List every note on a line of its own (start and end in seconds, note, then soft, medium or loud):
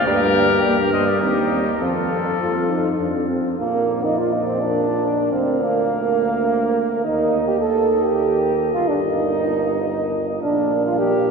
0.06 0.57 G2 loud
0.06 0.19 G3 loud
0.06 0.20 A#3 medium
0.06 0.92 G4 loud
0.06 0.91 A#4 loud
0.34 0.47 G3 medium
0.34 0.49 A#3 medium
0.62 1.15 G2 medium
0.62 0.76 G3 medium
0.62 0.77 A#3 medium
0.92 1.05 G3 medium
0.92 1.06 A#3 medium
0.92 1.07 C5 medium
0.92 1.09 D#5 loud
1.07 1.21 A#4 medium
1.07 1.22 D5 medium
1.21 1.73 D#2 medium
1.21 1.35 G3 medium
1.21 1.35 C4 medium
1.21 1.83 D#4 medium
1.21 1.79 G4 loud
1.51 1.64 G3 medium
1.51 1.64 C4 medium
1.79 2.33 F2 medium
1.79 1.94 F3 medium
1.79 1.94 C4 medium
1.79 3.30 F4 medium
1.79 3.26 A4 medium
2.10 2.23 F3 medium
2.10 2.24 C4 medium
2.40 2.92 F2 medium
2.40 2.53 F3 medium
2.40 2.71 F4 medium
2.69 2.83 F3 medium
2.69 3.00 D#4 medium
2.98 3.44 F2 medium
2.98 3.13 F3 medium
2.98 3.31 D4 medium
3.29 3.43 F3 medium
3.29 3.58 C4 medium
3.58 5.29 A#1 medium
3.58 4.05 A#3 medium
3.58 7.00 A#4 medium
3.58 5.28 D5 medium
4.03 4.20 D#4 medium
4.03 4.19 D#4 medium
4.17 4.34 F4 medium
4.17 4.35 F4 medium
4.33 4.46 D#4 medium
4.33 4.47 D#4 medium
4.46 4.62 C4 medium
4.46 4.61 C4 medium
4.60 5.34 D4 medium
4.60 5.35 D4 medium
5.32 7.06 D2 medium
5.32 5.62 C4 medium
5.32 5.64 C4 medium
5.32 7.01 F5 medium
5.61 7.04 A#3 medium
5.61 7.05 A#3 medium
7.04 8.74 D#2 medium
7.04 7.46 D#4 medium
7.04 7.50 D#4 medium
7.04 10.38 A#4 medium
7.04 10.38 D#5 medium
7.47 7.60 G4 medium
7.47 7.64 G4 medium
7.61 8.02 A4 medium
7.61 8.06 A4 medium
8.03 8.73 G4 medium
8.03 8.74 G4 medium
8.74 10.39 G1 medium
8.74 8.91 F4 loud
8.74 8.81 F4 medium
8.89 9.03 D4 medium
8.89 8.95 D4 medium
9.03 10.13 D#4 medium
10.42 11.31 A#1 medium
10.42 10.82 D4 medium
10.42 10.82 D4 loud
10.42 11.31 A#4 medium
10.42 11.31 F5 medium
10.84 10.97 F4 medium
10.84 10.98 F4 medium
10.98 11.31 G4 medium